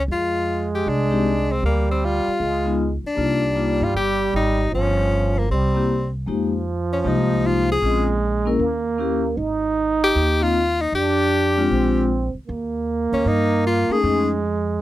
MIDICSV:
0, 0, Header, 1, 6, 480
1, 0, Start_track
1, 0, Key_signature, -3, "minor"
1, 0, Tempo, 387347
1, 100, Time_signature, 4, 2, 24, 8
1, 7775, Key_signature, -4, "minor"
1, 18357, End_track
2, 0, Start_track
2, 0, Title_t, "Tenor saxophone"
2, 0, Program_c, 0, 66
2, 148, Note_on_c, 0, 65, 86
2, 863, Note_off_c, 0, 65, 0
2, 929, Note_on_c, 0, 67, 69
2, 1097, Note_on_c, 0, 62, 80
2, 1116, Note_off_c, 0, 67, 0
2, 1884, Note_on_c, 0, 60, 76
2, 1902, Note_off_c, 0, 62, 0
2, 2034, Note_off_c, 0, 60, 0
2, 2053, Note_on_c, 0, 58, 72
2, 2324, Note_off_c, 0, 58, 0
2, 2370, Note_on_c, 0, 60, 69
2, 2541, Note_on_c, 0, 65, 86
2, 2560, Note_off_c, 0, 60, 0
2, 3476, Note_off_c, 0, 65, 0
2, 3804, Note_on_c, 0, 62, 86
2, 4752, Note_on_c, 0, 65, 73
2, 4770, Note_off_c, 0, 62, 0
2, 4907, Note_off_c, 0, 65, 0
2, 4913, Note_on_c, 0, 67, 86
2, 5350, Note_off_c, 0, 67, 0
2, 5403, Note_on_c, 0, 63, 75
2, 5836, Note_off_c, 0, 63, 0
2, 5882, Note_on_c, 0, 61, 76
2, 6674, Note_on_c, 0, 58, 63
2, 6692, Note_off_c, 0, 61, 0
2, 6824, Note_off_c, 0, 58, 0
2, 6832, Note_on_c, 0, 60, 63
2, 7565, Note_off_c, 0, 60, 0
2, 8585, Note_on_c, 0, 61, 65
2, 8692, Note_off_c, 0, 61, 0
2, 8692, Note_on_c, 0, 61, 59
2, 8768, Note_on_c, 0, 63, 78
2, 8786, Note_off_c, 0, 61, 0
2, 9256, Note_on_c, 0, 65, 84
2, 9274, Note_off_c, 0, 63, 0
2, 9548, Note_off_c, 0, 65, 0
2, 9565, Note_on_c, 0, 68, 91
2, 9995, Note_off_c, 0, 68, 0
2, 12439, Note_on_c, 0, 67, 96
2, 12924, Note_on_c, 0, 65, 92
2, 12943, Note_off_c, 0, 67, 0
2, 13405, Note_on_c, 0, 63, 82
2, 13423, Note_off_c, 0, 65, 0
2, 13558, Note_off_c, 0, 63, 0
2, 13570, Note_on_c, 0, 67, 94
2, 14948, Note_off_c, 0, 67, 0
2, 16277, Note_on_c, 0, 61, 71
2, 16449, Note_on_c, 0, 63, 81
2, 16468, Note_off_c, 0, 61, 0
2, 16917, Note_off_c, 0, 63, 0
2, 16935, Note_on_c, 0, 65, 86
2, 17248, Note_on_c, 0, 68, 91
2, 17267, Note_off_c, 0, 65, 0
2, 17712, Note_off_c, 0, 68, 0
2, 18357, End_track
3, 0, Start_track
3, 0, Title_t, "Vibraphone"
3, 0, Program_c, 1, 11
3, 1358, Note_on_c, 1, 56, 59
3, 1366, Note_on_c, 1, 60, 53
3, 1373, Note_on_c, 1, 63, 52
3, 1384, Note_on_c, 1, 67, 64
3, 1515, Note_off_c, 1, 56, 0
3, 1519, Note_off_c, 1, 60, 0
3, 1522, Note_off_c, 1, 63, 0
3, 1527, Note_off_c, 1, 67, 0
3, 3276, Note_on_c, 1, 56, 55
3, 3281, Note_on_c, 1, 59, 50
3, 3290, Note_on_c, 1, 63, 50
3, 3298, Note_on_c, 1, 65, 61
3, 3432, Note_off_c, 1, 56, 0
3, 3434, Note_off_c, 1, 59, 0
3, 3439, Note_off_c, 1, 63, 0
3, 3443, Note_off_c, 1, 65, 0
3, 3909, Note_on_c, 1, 58, 49
3, 3921, Note_on_c, 1, 62, 44
3, 3923, Note_on_c, 1, 63, 45
3, 3935, Note_on_c, 1, 65, 52
3, 4201, Note_off_c, 1, 58, 0
3, 4206, Note_off_c, 1, 62, 0
3, 4208, Note_off_c, 1, 63, 0
3, 4214, Note_off_c, 1, 65, 0
3, 4397, Note_on_c, 1, 58, 51
3, 4401, Note_on_c, 1, 62, 47
3, 4411, Note_on_c, 1, 63, 47
3, 4420, Note_on_c, 1, 65, 56
3, 4685, Note_off_c, 1, 58, 0
3, 4687, Note_off_c, 1, 62, 0
3, 4691, Note_off_c, 1, 63, 0
3, 4696, Note_off_c, 1, 65, 0
3, 7119, Note_on_c, 1, 58, 56
3, 7129, Note_on_c, 1, 60, 49
3, 7135, Note_on_c, 1, 64, 47
3, 7146, Note_on_c, 1, 67, 60
3, 7275, Note_off_c, 1, 58, 0
3, 7279, Note_off_c, 1, 60, 0
3, 7282, Note_off_c, 1, 64, 0
3, 7288, Note_off_c, 1, 67, 0
3, 7766, Note_on_c, 1, 56, 51
3, 7772, Note_on_c, 1, 58, 50
3, 7781, Note_on_c, 1, 63, 48
3, 7787, Note_on_c, 1, 67, 61
3, 8051, Note_off_c, 1, 56, 0
3, 8054, Note_off_c, 1, 58, 0
3, 8058, Note_off_c, 1, 63, 0
3, 8061, Note_off_c, 1, 67, 0
3, 8725, Note_on_c, 1, 56, 52
3, 8729, Note_on_c, 1, 58, 49
3, 8740, Note_on_c, 1, 63, 49
3, 8747, Note_on_c, 1, 67, 56
3, 9461, Note_off_c, 1, 56, 0
3, 9463, Note_off_c, 1, 58, 0
3, 9468, Note_off_c, 1, 63, 0
3, 9471, Note_off_c, 1, 67, 0
3, 9684, Note_on_c, 1, 60, 50
3, 9684, Note_on_c, 1, 61, 45
3, 9693, Note_on_c, 1, 65, 47
3, 9705, Note_on_c, 1, 68, 53
3, 9971, Note_off_c, 1, 60, 0
3, 9971, Note_off_c, 1, 61, 0
3, 9976, Note_off_c, 1, 65, 0
3, 9981, Note_off_c, 1, 68, 0
3, 10473, Note_on_c, 1, 58, 68
3, 10480, Note_on_c, 1, 61, 61
3, 10491, Note_on_c, 1, 64, 63
3, 10498, Note_on_c, 1, 70, 74
3, 10634, Note_off_c, 1, 58, 0
3, 10637, Note_off_c, 1, 61, 0
3, 10643, Note_off_c, 1, 64, 0
3, 10646, Note_off_c, 1, 70, 0
3, 11130, Note_on_c, 1, 58, 59
3, 11134, Note_on_c, 1, 61, 51
3, 11143, Note_on_c, 1, 64, 53
3, 11158, Note_on_c, 1, 67, 64
3, 11415, Note_off_c, 1, 58, 0
3, 11417, Note_off_c, 1, 61, 0
3, 11421, Note_off_c, 1, 64, 0
3, 11429, Note_off_c, 1, 67, 0
3, 12877, Note_on_c, 1, 58, 59
3, 12886, Note_on_c, 1, 60, 54
3, 12891, Note_on_c, 1, 63, 53
3, 12897, Note_on_c, 1, 65, 66
3, 13037, Note_off_c, 1, 58, 0
3, 13042, Note_off_c, 1, 60, 0
3, 13044, Note_off_c, 1, 63, 0
3, 13047, Note_off_c, 1, 65, 0
3, 14329, Note_on_c, 1, 56, 65
3, 14329, Note_on_c, 1, 60, 56
3, 14342, Note_on_c, 1, 62, 56
3, 14349, Note_on_c, 1, 65, 69
3, 14947, Note_off_c, 1, 56, 0
3, 14947, Note_off_c, 1, 60, 0
3, 14954, Note_off_c, 1, 62, 0
3, 14957, Note_off_c, 1, 65, 0
3, 17224, Note_on_c, 1, 57, 61
3, 17224, Note_on_c, 1, 61, 57
3, 17240, Note_on_c, 1, 63, 57
3, 17242, Note_on_c, 1, 68, 63
3, 17372, Note_off_c, 1, 57, 0
3, 17372, Note_off_c, 1, 61, 0
3, 17380, Note_off_c, 1, 63, 0
3, 17381, Note_off_c, 1, 68, 0
3, 17386, Note_on_c, 1, 57, 52
3, 17398, Note_on_c, 1, 61, 49
3, 17405, Note_on_c, 1, 63, 48
3, 17415, Note_on_c, 1, 68, 58
3, 17666, Note_off_c, 1, 57, 0
3, 17672, Note_off_c, 1, 61, 0
3, 17675, Note_off_c, 1, 63, 0
3, 17680, Note_off_c, 1, 68, 0
3, 18357, End_track
4, 0, Start_track
4, 0, Title_t, "Trombone"
4, 0, Program_c, 2, 57
4, 110, Note_on_c, 2, 56, 96
4, 2010, Note_on_c, 2, 55, 91
4, 2029, Note_off_c, 2, 56, 0
4, 2977, Note_on_c, 2, 56, 80
4, 2996, Note_off_c, 2, 55, 0
4, 3643, Note_off_c, 2, 56, 0
4, 3924, Note_on_c, 2, 55, 98
4, 5853, Note_on_c, 2, 53, 80
4, 5871, Note_off_c, 2, 55, 0
4, 6810, Note_off_c, 2, 53, 0
4, 6817, Note_on_c, 2, 55, 71
4, 7558, Note_off_c, 2, 55, 0
4, 7793, Note_on_c, 2, 53, 85
4, 9657, Note_off_c, 2, 53, 0
4, 9700, Note_on_c, 2, 56, 93
4, 10648, Note_on_c, 2, 58, 93
4, 10667, Note_off_c, 2, 56, 0
4, 11613, Note_on_c, 2, 63, 103
4, 11632, Note_off_c, 2, 58, 0
4, 13247, Note_off_c, 2, 63, 0
4, 13537, Note_on_c, 2, 62, 96
4, 14508, Note_on_c, 2, 60, 89
4, 14527, Note_off_c, 2, 62, 0
4, 15298, Note_off_c, 2, 60, 0
4, 15454, Note_on_c, 2, 58, 97
4, 17385, Note_on_c, 2, 56, 89
4, 17404, Note_off_c, 2, 58, 0
4, 18357, Note_off_c, 2, 56, 0
4, 18357, End_track
5, 0, Start_track
5, 0, Title_t, "Upright bass"
5, 0, Program_c, 3, 32
5, 101, Note_on_c, 3, 41, 68
5, 1010, Note_off_c, 3, 41, 0
5, 1066, Note_on_c, 3, 36, 69
5, 1972, Note_off_c, 3, 36, 0
5, 2016, Note_on_c, 3, 38, 71
5, 2756, Note_off_c, 3, 38, 0
5, 2974, Note_on_c, 3, 37, 67
5, 3715, Note_off_c, 3, 37, 0
5, 3929, Note_on_c, 3, 36, 66
5, 4672, Note_off_c, 3, 36, 0
5, 4721, Note_on_c, 3, 43, 58
5, 4880, Note_off_c, 3, 43, 0
5, 4889, Note_on_c, 3, 31, 66
5, 5337, Note_off_c, 3, 31, 0
5, 5375, Note_on_c, 3, 32, 67
5, 5821, Note_off_c, 3, 32, 0
5, 5852, Note_on_c, 3, 31, 68
5, 6765, Note_off_c, 3, 31, 0
5, 6818, Note_on_c, 3, 36, 68
5, 7729, Note_off_c, 3, 36, 0
5, 7776, Note_on_c, 3, 41, 75
5, 8689, Note_off_c, 3, 41, 0
5, 8732, Note_on_c, 3, 36, 75
5, 9647, Note_off_c, 3, 36, 0
5, 9691, Note_on_c, 3, 34, 70
5, 10608, Note_off_c, 3, 34, 0
5, 10649, Note_on_c, 3, 39, 77
5, 11567, Note_off_c, 3, 39, 0
5, 11613, Note_on_c, 3, 32, 73
5, 12529, Note_off_c, 3, 32, 0
5, 12585, Note_on_c, 3, 39, 76
5, 13496, Note_off_c, 3, 39, 0
5, 13537, Note_on_c, 3, 41, 72
5, 14452, Note_off_c, 3, 41, 0
5, 14506, Note_on_c, 3, 34, 71
5, 15247, Note_off_c, 3, 34, 0
5, 15475, Note_on_c, 3, 39, 77
5, 16212, Note_off_c, 3, 39, 0
5, 16262, Note_on_c, 3, 38, 67
5, 16416, Note_off_c, 3, 38, 0
5, 16423, Note_on_c, 3, 43, 76
5, 17166, Note_off_c, 3, 43, 0
5, 17388, Note_on_c, 3, 41, 77
5, 18299, Note_off_c, 3, 41, 0
5, 18357, End_track
6, 0, Start_track
6, 0, Title_t, "Muted upright bass strokes"
6, 2818, Note_on_c, 9, 29, 33
6, 2942, Note_off_c, 9, 29, 0
6, 3767, Note_on_c, 9, 29, 33
6, 3891, Note_off_c, 9, 29, 0
6, 15295, Note_on_c, 9, 29, 35
6, 15419, Note_off_c, 9, 29, 0
6, 17214, Note_on_c, 9, 29, 37
6, 17338, Note_off_c, 9, 29, 0
6, 18357, End_track
0, 0, End_of_file